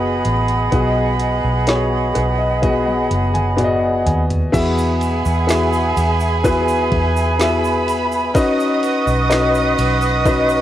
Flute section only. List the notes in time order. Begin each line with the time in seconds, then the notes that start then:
Already playing: G#4 D#5 F#5 B5
4.52 G#4 E5 F#5 B5
6.44 G#5
8.36 B4 D#5 F#5 C#6